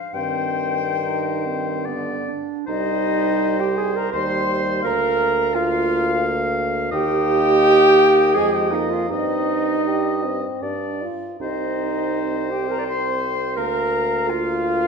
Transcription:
Already playing: flute F5
0.13 bassoon G2, french horn D#3, clarinet C4, oboe C5, flute G5
1.02 clarinet D#4
1.45 clarinet C4
1.86 french horn D3, clarinet B3, oboe D5
2.28 clarinet D4
2.67 bassoon C2, french horn G3, clarinet D#4, oboe C5, flute D#5
3.59 clarinet G4, flute G5
3.76 clarinet G#4, flute G#5
3.96 clarinet A#4, flute A#5
4.12 bassoon D#2, french horn G3, oboe C5, clarinet C5, flute C6
4.82 bassoon D2, french horn A#3, clarinet A#4, oboe F5, flute A#5
5.53 french horn A#3, clarinet F4, flute F5, oboe F5
6.92 bassoon D#2, french horn A#3, clarinet G4, oboe D#5, flute G5
8.35 bassoon F2, french horn G#3, clarinet G#4, oboe D#5, flute G#5
8.53 clarinet G4, flute G5
8.71 french horn A#3, clarinet D#4, flute D#5
8.90 clarinet F4, flute F5
9.09 bassoon G2, french horn C4, clarinet D#4, oboe D#5, flute D#5
9.85 french horn G4
10.24 french horn C4
10.62 bassoon G2, french horn D4, oboe D5
11.02 french horn F4
11.40 bassoon C2, french horn C4, clarinet D#4, oboe C5, flute D#5
12.51 clarinet G4, flute G5
12.69 clarinet A#4, flute A#5
12.78 clarinet D5
12.85 clarinet C5, flute C6
13.56 bassoon D2, french horn A#3, clarinet A#4, oboe F5, flute A#5
14.28 clarinet F4, flute F5

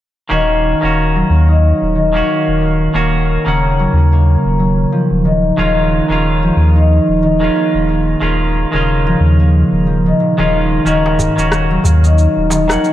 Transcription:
0.29 sub bass D#1, clean electric guitar D#3 A#3 C#4 F#4, harp D#3
0.81 sub bass D#1, clean electric guitar D#3 A#3 C#4, harp C#4
0.85 clean electric guitar F#4
1.16 harp F#3
1.30 sub bass D#2
1.48 harp D#4
1.82 sub bass D#1
1.95 harp D#3
2.13 clean electric guitar D#3 A#3 C#4 F#4
2.28 harp A#3
2.47 sub bass D#1
2.61 harp A#3
2.94 sub bass D#1, clean electric guitar D#3 A#3 C#4 F#4, harp A#3
3.44 sub bass D#1, harp C#3, clean electric guitar D#3 A#3 C#4 F#5
3.79 harp F#3
3.93 sub bass D#2
4.12 harp A#3
4.45 sub bass D#1
4.59 harp F#3
4.92 harp F3
5.11 sub bass D#1
5.25 harp D#3
5.57 sub bass D#1, clean electric guitar D#3 G#3 C#4 F4, harp D#3
6.08 sub bass D#1, clean electric guitar D#3 G#3 C#4 F4, harp C#4
6.43 harp F3
6.56 sub bass D#2
6.76 harp D#4
7.08 sub bass D#1
7.23 harp D#3
7.40 clean electric guitar D#3 G#3 C#4 F4
7.56 harp A#3
7.74 sub bass D#1
7.89 harp A#3
8.21 sub bass D#1, clean electric guitar D#3 G#3 C#4 F4, harp A#3
8.72 sub bass D#1, harp C#3, clean electric guitar D#3 G#3 C#4
8.76 clean electric guitar F4
9.07 harp F3
9.20 sub bass D#2
9.40 harp A#3
9.72 sub bass D#1
9.87 harp F3
10.06 harp D#3
10.20 harp A#2
10.38 sub bass D#1, clean electric guitar D#3 G#3 C#4 F4, harp D#3
10.53 harp G#3
10.85 sub bass D#1, clean electric guitar D#3 A#3 C#4 F#4, harp D#3, shaker
11.06 darbuka tek
11.19 darbuka ka, darbuka dum, shaker
11.36 sub bass D#1, clean electric guitar D#3 A#3 C#4 F#4, harp C#4, shaker
11.52 cross-stick, shaker
11.71 harp F#3
11.84 sub bass D#2, darbuka dum, shaker
12.04 harp D#4, shaker
12.18 shaker
12.37 sub bass D#1
12.50 harp D#3, darbuka tek, shaker
12.68 clean electric guitar D#3 A#3 C#4, harp F3, cross-stick, darbuka tek, shaker
12.72 clean electric guitar F#5
12.84 harp A#3, shaker

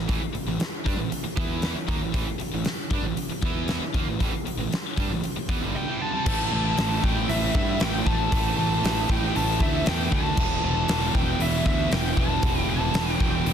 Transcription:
0.07 picked electric bass A1, distorted electric guitar A2 E3, kick, open hi-hat
0.21 muted distorted electric guitar stroke, muted picked electric bass stroke
0.33 muted distorted electric guitar stroke, muted picked electric bass stroke, open hi-hat
0.47 picked electric bass A1, distorted electric guitar A2 E3
0.59 muted distorted electric guitar stroke, muted picked electric bass stroke, snare, open hi-hat
0.84 picked electric bass G2, distorted electric guitar G3 D4, kick, open hi-hat
0.97 picked electric bass A1, distorted electric guitar A2 E3
1.10 muted distorted electric guitar stroke, muted picked electric bass stroke, open hi-hat
1.24 muted picked electric bass stroke, muted distorted electric guitar stroke
1.37 picked electric bass E2, distorted electric guitar E3 B3 E4, kick, open hi-hat
1.62 snare, open hi-hat
1.75 muted picked electric bass stroke, muted distorted electric guitar stroke
1.87 picked electric bass D#2, distorted electric guitar D#3 A#3, kick, open hi-hat
1.99 picked electric bass A1, distorted electric guitar A2 E3
2.12 picked electric bass A1, distorted electric guitar A2 E3, kick, open hi-hat
2.26 muted distorted electric guitar stroke, muted picked electric bass stroke
2.39 muted distorted electric guitar stroke, muted picked electric bass stroke, open hi-hat
2.52 picked electric bass A1, distorted electric guitar A2 E3
2.65 muted picked electric bass stroke, muted distorted electric guitar stroke, snare, open hi-hat
2.90 picked electric bass G2, distorted electric guitar G3 D4, kick, open hi-hat
3.03 picked electric bass A1, distorted electric guitar A2 E3
3.15 muted picked electric bass stroke, muted distorted electric guitar stroke, open hi-hat
3.29 muted picked electric bass stroke, muted distorted electric guitar stroke
3.42 picked electric bass E2, distorted electric guitar E3 B3 E4, kick, open hi-hat
3.68 snare, open hi-hat
3.80 muted distorted electric guitar stroke, muted picked electric bass stroke
3.93 picked electric bass D#2, distorted electric guitar D#3 A#3, kick, open hi-hat
4.06 picked electric bass A1, distorted electric guitar A2 E3
4.19 picked electric bass A1, distorted electric guitar A2 E3, kick, open hi-hat
4.30 muted picked electric bass stroke, muted distorted electric guitar stroke
4.44 muted picked electric bass stroke, muted distorted electric guitar stroke, open hi-hat
4.57 picked electric bass A1, distorted electric guitar A2 E3
4.69 muted picked electric bass stroke, muted distorted electric guitar stroke, open hi-hat
4.74 snare
4.97 picked electric bass G2, distorted electric guitar G3 D4, kick, open hi-hat
5.09 picked electric bass A1, distorted electric guitar A2 E3
5.23 muted picked electric bass stroke, muted distorted electric guitar stroke, open hi-hat
5.37 muted picked electric bass stroke, muted distorted electric guitar stroke
5.48 picked electric bass E2, distorted electric guitar E3 B3, kick, open hi-hat
5.61 picked electric bass G1, distorted electric guitar G2 D3 G3
5.76 lead electric guitar G5
5.88 distorted electric guitar A2 E3
6.01 distorted electric guitar G2 D3, lead electric guitar A5
6.13 distorted electric guitar C3 G3
6.25 picked electric bass A1, distorted electric guitar A2 E3 A3, kick, crash
6.51 picked electric bass A1, distorted electric guitar A2 E3 A3, lead electric guitar A5
6.77 picked electric bass A1, distorted electric guitar A2 E3 A3, snare, open hi-hat
7.03 picked electric bass A1, distorted electric guitar A2 E3 A3, lead electric guitar G5, kick
7.28 picked electric bass A1, distorted electric guitar A2 E3 A3, lead electric guitar E5, open hi-hat
7.54 picked electric bass G2, distorted electric guitar A2 E3 A3, lead electric guitar E5, kick
7.79 picked electric bass A1, distorted electric guitar A2 E3 A3, lead electric guitar G5, snare, open hi-hat
8.05 picked electric bass A1, distorted electric guitar A2 E3 A3, lead electric guitar A5, kick
8.10 distorted electric guitar A2
8.30 picked electric bass A1, distorted electric guitar A2 E3 A3, kick, open hi-hat
8.36 distorted electric guitar A3
8.57 picked electric bass A1, distorted electric guitar A2 E3 A3, lead electric guitar A5
8.82 picked electric bass A1, distorted electric guitar A2 E3 A3, snare, open hi-hat
9.08 picked electric bass A1, distorted electric guitar A2 E3 A3, lead electric guitar G5, kick
9.33 picked electric bass A1, distorted electric guitar A2 E3 A3, lead electric guitar A5, open hi-hat
9.60 picked electric bass D2, distorted electric guitar A2 E3 A3, lead electric guitar E5, kick
9.85 picked electric bass E2, distorted electric guitar A2 E3 A3, lead electric guitar G5, snare, open hi-hat
10.11 picked electric bass D2, distorted electric guitar A2 E3 A3, lead electric guitar A5, kick
10.37 picked electric bass E1, distorted electric guitar E2 B2 E3, kick, crash
10.63 picked electric bass E1, distorted electric guitar E2 B2 E3, lead electric guitar A5
10.88 picked electric bass E1, distorted electric guitar E2 B2 E3, snare, open hi-hat
11.14 picked electric bass E1, distorted electric guitar E2 B2 E3, lead electric guitar G5, kick
11.40 picked electric bass E1, distorted electric guitar E2 B2 E3, lead electric guitar E5, open hi-hat
11.65 picked electric bass D2, distorted electric guitar E2 B2 E3, lead electric guitar E5, kick
11.91 picked electric bass E1, distorted electric guitar E2 B2 E3, lead electric guitar G5, snare, open hi-hat
12.16 picked electric bass E1, distorted electric guitar E2 B2 E3, lead electric guitar A5, kick
12.20 distorted electric guitar E2
12.42 picked electric bass E1, distorted electric guitar E2 B2 E3, kick, open hi-hat
12.69 picked electric bass E1, distorted electric guitar E2 B2 E3, lead electric guitar A5
12.94 picked electric bass E1, distorted electric guitar E2 B2 E3, snare, open hi-hat
13.20 picked electric bass E1, distorted electric guitar E2 B2 E3, lead electric guitar G5, kick
13.45 picked electric bass E1, distorted electric guitar E2 B2 E3, open hi-hat

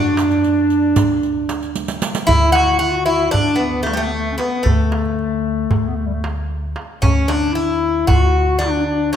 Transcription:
Already playing: upright bass F#2, bouzouki D4, clarinet D4
0.17 riq, darbuka tek
0.31 riq
0.44 riq, darbuka ka
0.70 riq
0.96 upright bass D2, riq, darbuka dum
1.23 riq, darbuka ka
1.49 riq, darbuka tek
1.63 riq
1.75 riq, darbuka ka
1.88 riq
2.02 riq, darbuka tek
2.15 riq
2.27 upright bass D2, bouzouki E4, clarinet E4, darbuka dum
2.52 bouzouki F#4, darbuka tek
2.69 darbuka ka
2.79 clarinet F4, bouzouki F#4, darbuka ka
2.96 clarinet F#4
3.06 bouzouki E4
3.31 upright bass D2, bouzouki D4, clarinet D4, darbuka dum
3.56 bouzouki B3
3.60 clarinet B3
3.83 bouzouki A3, clarinet A3, darbuka tek
3.91 clarinet G3 A3, bouzouki G3
3.97 bouzouki A3
4.01 clarinet A3
4.07 clarinet B3
4.13 clarinet A3
4.33 clarinet C#4
4.37 clarinet B3, bouzouki B3, darbuka tek
4.63 upright bass D2, bouzouki A3, clarinet A3, darbuka dum
4.92 darbuka tek
5.06 darbuka ka
5.19 darbuka ka
5.71 upright bass D2, darbuka dum
5.88 clarinet B3
5.96 clarinet A3
6.07 clarinet G3
6.14 clarinet A3
6.24 darbuka tek
6.76 darbuka tek
7.02 upright bass D2, bouzouki C#4, clarinet C#4, darbuka dum
7.28 bouzouki D4, clarinet D4, darbuka tek
7.43 darbuka ka
7.53 clarinet E4, bouzouki E4, darbuka ka
8.07 upright bass D2, clarinet F4, bouzouki F#4, darbuka dum
8.22 clarinet F#4
8.59 bouzouki D4, clarinet D4, darbuka tek
8.86 clarinet D4
9.13 bouzouki C#4

